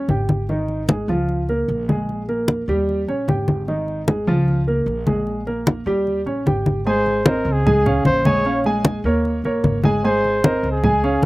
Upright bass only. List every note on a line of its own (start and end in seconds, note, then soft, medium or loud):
0.08 1.02 G#1 medium
1.08 1.64 C#2 medium
1.68 2.62 A#1 medium
2.68 3.05 D#2 medium
3.07 3.26 A#1 medium
3.28 4.21 G#1 medium
4.27 4.83 C#2 medium
4.86 5.80 A#1 medium
5.86 6.23 D#2 medium
6.26 6.45 A#1 medium
6.46 7.40 G#1 medium
7.45 8.01 C#2 medium
8.05 8.98 A#1 loud
9.04 9.41 D#2 medium
9.44 9.62 A#1 medium
9.64 10.57 G#1 medium
10.63 11.19 C#2 medium
11.22 11.26 A#1 loud